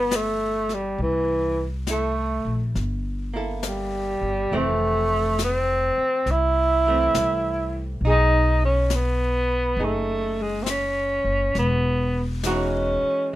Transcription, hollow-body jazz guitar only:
Already playing: E3
1.89 E4 A4
3.34 A#3 E4 A4
4.53 E3 A3 C4
6.87 E3 A3 C4
8.05 D#4 G#4
9.79 D#4 G#4
12.45 E3 G#3 D#4 F#4

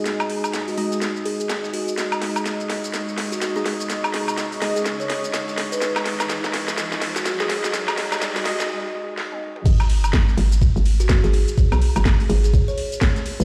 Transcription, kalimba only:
0.68 F#4
1.25 G#4
1.40 G#4
1.73 F#4
3.32 F#4
3.41 F#4
3.56 G#4
4.62 G#4
4.76 G#4
5.00 C#5
5.72 B4
5.82 B4
7.16 F#4
7.25 F#4
7.40 G#4
7.49 G#4
8.36 F#4
11.00 F#4
11.10 F#4
11.24 G#4
11.33 G#4
12.29 G#4
12.44 G#4
12.68 C#5
13.40 B4

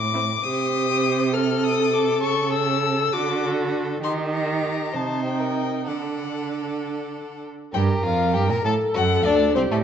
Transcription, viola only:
0.14 C4
0.44 G4
1.33 A4
2.22 A4
3.13 F#4
4.02 D#4
4.94 D#4
5.87 D4
7.74 A#4
8.64 A4
9.56 G4

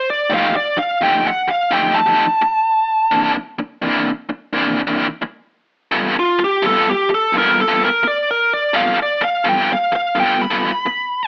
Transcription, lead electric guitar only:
0.10 D5
0.34 F5
0.56 D5
0.79 F5
1.03 G5
1.27 F#5
1.51 F5
1.73 G5
1.95 A5
6.19 F4
6.44 G4
6.66 A4
6.90 G4
7.14 A4
7.38 A#4
7.61 A4
7.85 A#4
8.08 D5
8.31 A#4
8.53 D5
8.76 F5
9.03 D5
9.25 F5
9.49 G5
9.73 F5
9.96 F5
10.20 G5
10.42 B5

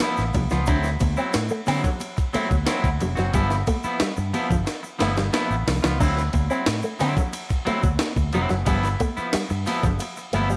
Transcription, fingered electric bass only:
0.18 A1
0.35 C2
0.52 C#2
0.68 D2
1.01 D2
1.35 A2
1.68 D3
2.35 muted fingered electric bass stroke
2.51 D2
2.84 D2
3.01 F1
3.18 F#1
3.34 G1
3.84 muted fingered electric bass stroke
4.01 muted fingered electric bass stroke
4.18 G2
4.51 G1
5.01 G1
5.50 A1
5.67 C2
5.84 C#2
6.01 D2
6.34 D2
6.67 A2
7.01 D3
7.67 muted fingered electric bass stroke
7.84 D2
8.17 D2
8.34 F1
8.51 F#1
8.67 G1
9.18 muted fingered electric bass stroke
9.34 muted fingered electric bass stroke
9.51 G2
9.84 G1
10.34 G1

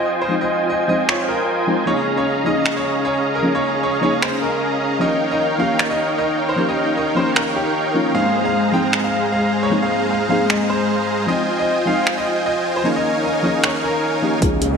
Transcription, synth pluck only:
Already playing: F3 G#3 C4 D#4
0.28 F3 G#3 C4 D#4
0.87 F3 G#3 C4 D#4
1.67 F3 G#3 C4 D#4 F4
1.85 F3 A#3 C#4 D#4
1.89 G#4
2.44 F3 A#3 C#4 D#4
2.48 G#4
3.42 F3 A#3 C#4 D#4
3.46 G#4
4.01 F3 A#3 C#4 D#4
4.05 G#4
4.99 F3 A#3 C#4 D#4 G4
5.58 F3 A#3 C#4 D#4
5.62 G4
6.56 F3 A#3 C#4 D#4 G4
7.15 F3 A#3 C#4 D#4
7.19 G4
7.94 F3 A#3 C#4 D#4 F4
8.13 F3 A#3 C4 D#4
8.17 G#4
8.72 F3 A#3 C4 D#4 G#4
9.69 F3 A#3 C4 D#4
9.73 G#4
10.28 F3 A#3 C4 D#4 G#4
11.26 F3 G#3 C4 D#4
11.85 F3 G#3 C4 D#4
12.83 F3 A#3 C#4 D#4 G#4
13.42 F3 A#3 C#4 D#4
13.46 G#4
14.21 F3 A#3 C#4 D#4 G4
14.40 F3 A#3 C#4 D#4
14.44 G#4

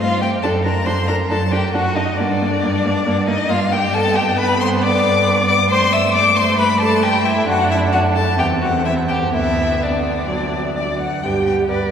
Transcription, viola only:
0.21 A3
0.44 D4
0.65 D4
0.86 D4
1.08 D4
1.31 D4
1.52 D4
1.75 D4
1.97 D4
2.19 A#3
2.41 A#3
2.63 A#3
2.85 A#3
3.06 A#3
3.28 A#3
3.49 A#3
3.72 A#3
3.94 B3
5.70 A3
7.48 D4
8.39 C4
9.33 B3
10.30 F#3
11.24 G4
11.69 B4

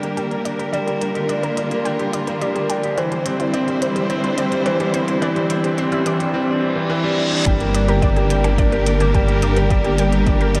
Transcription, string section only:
Already playing: D3 G3 A#3 G4 A#4
0.73 F4
2.97 G3 C4 E4 C5
7.46 D3 G3 A#3 G4 A#4

